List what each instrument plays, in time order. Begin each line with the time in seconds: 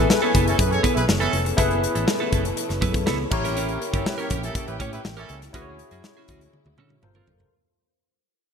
Already playing: string section E3 B3 C#4 G#5, tine electric piano E4 G#4 A4 B4
0.10 horn section E4 G#4 B4, muted clean electric guitar stroke, snare
0.22 clean electric guitar B3 E4 A4, horn section C#4 A4 C#5
0.35 fingered electric bass F#1, clean electric guitar B3 E4 A4, kick, closed hi-hat
0.46 horn section C#4 E4 A4, muted clean electric guitar stroke, closed hi-hat
0.58 fingered electric bass F#2, horn section E4 G#4 B4, kick, closed hi-hat
0.71 horn section C#4 A4 C#5, muted clean electric guitar stroke, closed hi-hat
0.83 clean electric guitar B3 E4 B4, kick, closed hi-hat
0.95 fingered electric bass B1, horn section E4 G#4 B4, muted clean electric guitar stroke, closed hi-hat
1.08 fingered electric bass F#1, muted clean electric guitar stroke, snare
1.19 clean electric guitar B3 E4 A4, horn section C#4 E4 A4, closed hi-hat
1.33 fingered electric bass F1, muted clean electric guitar stroke, closed hi-hat
1.45 muted clean electric guitar stroke, closed hi-hat
1.57 fingered electric bass F#1, string section A3, clean electric guitar B3 E4 A4, tine electric piano E4 G#4 A4 B4, kick, closed hi-hat
1.71 closed hi-hat
1.83 muted clean electric guitar stroke, closed hi-hat
1.95 fingered electric bass A1, clean electric guitar B3 E4 A4, closed hi-hat
2.07 muted clean electric guitar stroke, snare
2.20 clean electric guitar B3 E4 A4
2.32 fingered electric bass F#1, clean electric guitar B3 E4 A4, kick, closed hi-hat
2.45 muted clean electric guitar stroke, closed hi-hat
2.57 closed hi-hat
2.69 fingered electric bass F#1, muted clean electric guitar stroke, snare, closed hi-hat
2.81 fingered electric bass F#2, clean electric guitar B3 E4 B4, kick, closed hi-hat
2.94 muted clean electric guitar stroke, kick, closed hi-hat
3.06 fingered electric bass C#2, clean electric guitar B3 E4 A4, snare
3.19 muted clean electric guitar stroke
3.31 fingered electric bass A1, string section C#3 A#3 G4, tine electric piano E4 G4 A#4 C#5, muted clean electric guitar stroke, kick, crash
3.44 clean electric guitar C#4 G4 A#4, snare, closed hi-hat
3.56 clean electric guitar C#4 G4 A#4, closed hi-hat
3.69 closed hi-hat
3.81 muted clean electric guitar stroke, closed hi-hat
3.93 fingered electric bass G1, horn section C#4 E4 A4, clean electric guitar C#4 G4 A#4, kick, closed hi-hat
4.05 horn section E4 G4 B4, muted clean electric guitar stroke, snare
4.18 clean electric guitar C#4 G4 A#4, horn section G4 A#4 C#5, closed hi-hat
4.30 fingered electric bass A#1, clean electric guitar C#4 G4 A#4, kick, closed hi-hat
4.43 horn section C#4 E4 A4, muted clean electric guitar stroke, closed hi-hat
4.55 horn section C#4 E4 A4, kick, closed hi-hat
4.67 fingered electric bass A1, horn section E4 G4 B4, muted clean electric guitar stroke, closed hi-hat
4.80 fingered electric bass A2, clean electric guitar C#4 G4 C#5, kick, closed hi-hat
4.92 horn section E4 G4 B4, muted clean electric guitar stroke, closed hi-hat
5.05 fingered electric bass A1, muted clean electric guitar stroke, snare
5.17 horn section C#4 E4 A4, clean electric guitar C#4 G4 A#4, closed hi-hat
5.29 fingered electric bass C#2, muted clean electric guitar stroke, closed hi-hat
5.42 muted clean electric guitar stroke, snare, closed hi-hat
5.53 fingered electric bass D2, string section F#3 G#3 E4, clean electric guitar C#4 F#4 G#4, tine electric piano E4 F#4 G#4 B4, kick, closed hi-hat
5.62 tine electric piano C#5
5.79 muted clean electric guitar stroke, closed hi-hat
5.91 fingered electric bass F#2, clean electric guitar C#4 F#4 G#4, closed hi-hat
6.04 muted clean electric guitar stroke, snare
6.17 clean electric guitar C#4 F#4 G#4
6.28 fingered electric bass D2, clean electric guitar C#4 F#4 G#4, kick, closed hi-hat
6.41 muted clean electric guitar stroke, closed hi-hat
6.53 high tom
6.66 fingered electric bass D2, muted clean electric guitar stroke, high tom
6.77 fingered electric bass D3, clean electric guitar C#4 F#4 A4, mid tom
6.90 muted clean electric guitar stroke, mid tom
7.02 fingered electric bass G1, string section C3 G3 A#3 F4, tine electric piano F4 A4 A#4 C5, muted clean electric guitar stroke, mid tom
7.15 clean electric guitar C4 F4 A#4, mid tom
7.27 fingered electric bass F#1, muted clean electric guitar stroke, floor tom
7.40 muted clean electric guitar stroke, floor tom